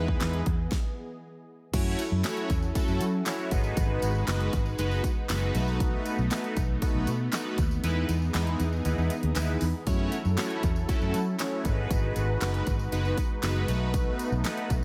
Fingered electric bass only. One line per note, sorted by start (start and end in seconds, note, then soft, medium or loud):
0.00 0.16 E2 loud
0.21 0.41 E2 medium
0.46 0.67 E2 loud
1.74 1.94 F#2 loud
2.12 2.22 F#2 loud
2.50 2.70 E2 loud
2.88 2.98 F#2 loud
3.01 3.21 F#3 medium
3.52 3.72 G#1 loud
3.77 3.97 G#1 loud
4.03 4.23 G#1 medium
4.28 4.48 F#1 loud
4.53 4.73 G#1 medium
4.79 4.99 F#1 loud
5.30 5.50 F#1 loud
5.55 5.95 B1 loud
6.19 6.29 B1 loud
6.57 6.77 B1 medium
6.95 7.05 B1 loud
7.07 7.28 B2 medium
7.58 7.78 D#2 medium
7.84 8.04 E2 loud
8.09 8.29 E2 medium
8.34 8.55 E2 loud
8.60 8.80 E2 loud
8.85 8.95 D#2 loud
8.98 9.08 E2 medium
9.23 9.33 D#2 medium
9.36 9.56 D#2 medium
9.62 9.72 E2 medium
9.87 10.07 F#2 loud
10.25 10.35 F#2 medium
10.64 10.84 E2 medium
11.02 11.12 F#2 loud
11.14 11.34 F#3 medium
11.65 11.85 G#1 loud
11.91 12.11 G#1 loud
12.16 12.36 G#1 medium
12.41 12.61 F#1 loud
12.67 12.87 G#1 loud
12.92 13.12 F#1 loud
13.43 13.63 F#1 loud
13.68 14.09 B1 loud
14.32 14.42 B1 medium
14.70 14.84 B1 loud